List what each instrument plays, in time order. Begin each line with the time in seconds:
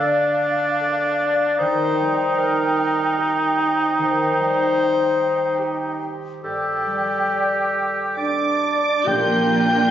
Already playing: harp D3 A3, oboe D4, flute F5
0.00 harp D5, clarinet D5
0.41 harp F5
0.80 harp A4
1.20 harp D5
1.59 harp D#3, oboe D#4, clarinet C5, flute G5
1.99 harp G3
2.38 clarinet A#4, harp C5
2.79 harp G5
3.18 harp G4
3.58 harp C5
3.97 harp D#3, clarinet C5
4.38 harp G3
5.18 harp G5
5.59 harp G4, clarinet G4
6.01 harp C5
6.43 harp G2, oboe G4, clarinet A4, flute G5
6.87 harp G3
7.29 harp D5
7.74 harp G5
8.17 french horn section D4, harp G4, oboe D5, flute D5, violin section D6
8.63 harp D5
9.04 double bass section A#1, timpani A#2, cello section A#2, harp A#2, viola section A#3 D4, violin section F4 A#4 G6, french horn section G4, flute G5, oboe G5
9.35 harp F3
9.62 harp D4